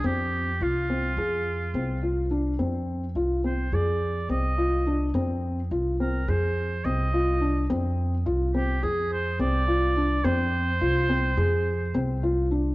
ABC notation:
X:1
M:9/8
L:1/8
Q:3/8=71
K:Fdor
V:1 name="Oboe"
G2 F6 z | z3 c d2 e3 | z3 B c2 e3 | z3 G A c d3 |
c6- c z2 |]
V:2 name="Felt piano"
C2 F C A2 C F D | C2 F C A2 C F D | C2 F C A2 C F D | C2 F C A2 C F D |
C2 F C A2 C F D |]
V:3 name="Upright bass" clef=bass
F,,2 C,,2 F,,2 C,,3 | F,,2 C,,2 F,,2 C,,3 | F,,2 C,,2 F,,2 C,,3 | F,,2 C,,2 F,,2 C,,3 |
F,,2 C,,2 F,,2 C,,3 |]